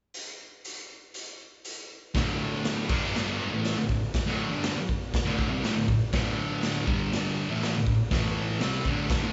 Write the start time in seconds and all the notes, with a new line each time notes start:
0.14 closed hi-hat
0.65 closed hi-hat
1.14 closed hi-hat
1.65 closed hi-hat
2.14 D2 A2 D3, kick, snare, open hi-hat
2.64 snare, open hi-hat
2.89 G2 D3 G3, kick, crash
3.16 snare
3.52 A2 E3 A3
3.64 snare, open hi-hat
3.77 D2 A2
3.89 kick
4.14 kick, snare, open hi-hat
4.27 D2 A2 D3
4.51 G2 D3 G3
4.63 snare, open hi-hat
4.77 muted distorted electric guitar stroke
4.89 kick
5.14 kick, snare, open hi-hat
5.26 D2 A2 D3
5.39 kick
5.50 C3 G3
5.63 D2 A2, snare, open hi-hat
5.76 D2 A2
5.88 kick
6.13 D2 A2 D3, kick, snare, open hi-hat
6.62 snare, open hi-hat
6.87 G2 D3 G3, kick
7.12 snare, open hi-hat
7.49 A2 E3 A3
7.62 snare, open hi-hat
7.75 D2 A2
7.87 kick
8.11 A2 E3 A3, kick, snare, open hi-hat
8.60 C3 G3 C4, snare, open hi-hat
8.85 D2 A2 D3, kick
9.10 G2 D3, kick, snare, open hi-hat
9.22 D2 A2 D3